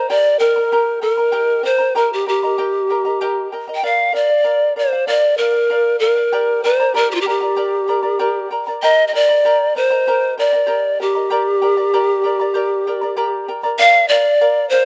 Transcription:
Already playing: pan flute C5
0.10 charango G4 A#4 D#5 G5 A#5, pan flute D5
0.39 pan flute A#4, charango A#4 D#5 G5 A#5
0.56 charango A#4 D#5 A#5
0.72 charango G4 A#4 D#5 G5 A#5
1.01 pan flute A4, charango A#4 D#5 G5 A#5
1.15 pan flute A#4, charango D#5 A#5
1.19 charango A#4
1.32 charango G4 A#4 D#5 G5 A#5
1.63 charango A#4 D#5 G5 A#5, pan flute C5
1.78 charango A#4 D#5 A#5
1.95 charango G4 A#4 D#5 G5 A#5, pan flute A#4
2.13 pan flute G4
2.26 pan flute G4, charango A#4 D#5 G5 A#5
2.43 charango A#4 D#5 A#5
2.58 charango G4 A#4 D#5 G5 A#5
2.90 charango A#4 D#5 G5 A#5
3.05 charango A#4 D#5 A#5
3.21 charango G4 A#4 D#5 G5 A#5
3.52 charango A#4 D#5 G5 A#5
3.68 charango A#4 D#5 A#5
3.75 pan flute G5
3.83 charango A#4 D5 F5, pan flute F5
4.13 charango A#4 D5 F5, pan flute D5
4.29 charango D5 F5
4.44 charango A#4 D5 F5
4.76 charango A#4 D5 F5, pan flute C5
4.93 charango D5 F5
5.07 charango A#4 D5 F5, pan flute D5
5.38 pan flute A#4, charango A#4 D5 F5
5.54 charango D5 F5
5.70 charango A#4 D5 F5
6.00 pan flute A#4, charango A#4 D5 F5
6.17 charango D5 F5
6.32 charango G4 A#4 D5 G5 A#5
6.64 charango A#4 D5 G5 A#5, pan flute C5
6.80 charango A#4 D5 A#5
6.94 charango G4 A#4 D5 G5 A#5, pan flute A#4
7.11 pan flute F4 G4
7.21 pan flute G4
7.26 pan flute G4, charango A#4 D5 G5 A#5
7.41 charango A#4 D5 A#5
7.56 charango G4 A#4 D5 G5 A#5
7.87 charango A#4 D5 G5 A#5
8.03 charango A#4 D5 A#5
8.19 charango G4 A#4 D5 G5 A#5
8.51 charango A#4 D5 G5 A#5
8.67 charango A#4 D5 A#5
8.82 charango G4 A#4 D#5 G5 A#5, pan flute D#5
9.07 pan flute D#5
9.13 charango A#4 D#5 G5 A#5, pan flute D5
9.29 charango A#4 D#5 A#5
9.45 charango G4 A#4 D#5 G5 A#5
9.75 charango A#4 D#5 G5 A#5, pan flute C5
9.90 charango A#4 D#5 A#5
10.07 charango G4 A#4 D#5 G5 A#5
10.38 charango A#4 D#5 G5 A#5, pan flute D5
10.53 charango A#4 D#5 A#5
10.67 charango G4 A#4 D#5 G5 A#5
11.00 pan flute G4, charango A#4 D#5 G5 A#5
11.15 charango A#4 D#5 A#5
11.30 charango G4 A#4 D5 G5 A#5
11.62 charango A#4 D5 G5 A#5
11.77 charango A#4 D5 A#5
11.93 charango G4 A#4 D5 G5 A#5
12.24 charango A#4 D5 G5 A#5
12.40 charango A#4 D5 A#5
12.54 charango G4 A#4 D5 G5 A#5
12.87 charango A#4 D5 G5 A#5
13.01 charango A#4 D5 A#5
13.16 charango G4 A#4 D5 G5 A#5
13.48 charango A#4 D5 G5 A#5
13.63 charango A#4 D5 A#5
13.79 charango A#4 D5 F5, pan flute F5
14.09 charango A#4 D5 F5, pan flute D5
14.25 charango D5 F5
14.41 charango A#4 D5 F5
14.70 charango A#4 D5 F5, pan flute C5

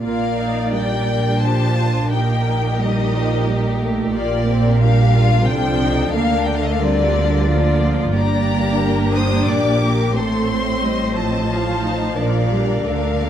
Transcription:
0.02 double bass section A#1, cello section A#2, viola section A#3 F4, violin section A#4 D5 F5
0.36 viola section D#4
0.71 viola section G3 D4, violin section A#4 G5
1.07 viola section D4
1.41 viola section F3, violin section G4 C5 A5
1.76 violin section F4
2.11 double bass section A#1, cello section A#2, viola section A#3 D#4, violin section G4 A#4 G5
2.79 viola section G3, violin section D#5
3.13 viola section F3
3.47 viola section G3
3.81 viola section A3
4.13 double bass section A#1, cello section A#2, viola section A#3 F4, violin section A#4 D5
4.47 viola section C4
4.81 viola section G3 D4, violin section G4 F5
5.15 violin section F4
5.48 double bass section C2, cello section C3, viola section F3 F4, violin section D4 A4 G5
5.82 viola section D#4
6.14 double bass section D2, cello section D3, viola section A#3 D4, violin section D4 A#4 F5
6.46 viola section A3, violin section G5
6.55 violin section F5
6.64 violin section D#5
6.72 violin section F5
6.80 viola section G3 C4, violin section F4 A#4 D5
7.16 viola section A#3
7.46 viola section F3, violin section F4 D5
7.80 viola section F3
8.13 double bass section G1, cello section G2, viola section A#3 D4, violin section G4 D5 A#5
8.80 violin section A#4
9.14 violin section C5 D#6
9.47 double bass section A#1, cello section A#2, violin section G4 D5 D6
9.81 violin section A#4
10.15 double bass section A1, cello section A2, viola section A3 C4, violin section A4 C5 C6
10.49 violin section C5
10.82 viola section G3, violin section D#5
11.14 viola section F3, violin section A5
11.50 viola section F4, violin section C5 F5
11.82 viola section D#4
12.17 double bass section A#1, cello section A#2, viola section F3 D4, violin section A#4 D5 F5
12.52 viola section G3
12.86 double bass section D2, cello section D3, viola section A3, violin section D5 F5
13.21 viola section A#3

